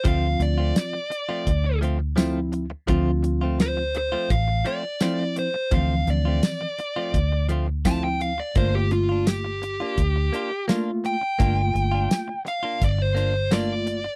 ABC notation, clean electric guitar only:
X:1
M:4/4
L:1/16
Q:1/4=85
K:Dm
V:1 name="Clean electric guitar"
[F,A,CF] z2 [A,CF] z3 [F,A,CF] z2 [F,A,CF] z [F,A,CF] z3 | [F,A,CF] z2 [A,CF] z3 [F,A,CF] z2 [F,A,CF] z [F,A,CF] z3 | [F,A,CF] z2 [A,CF] z3 [F,A,CF] z2 [F,A,CF] z [F,A,CF] z3 | [B,DF] z2 [DF] z3 [B,DF] z2 [B,DF] z [B,DF] z3 |
[B,DF] z2 [DF] z3 [B,DF] z2 [B,DF] z [B,DF] z3 |]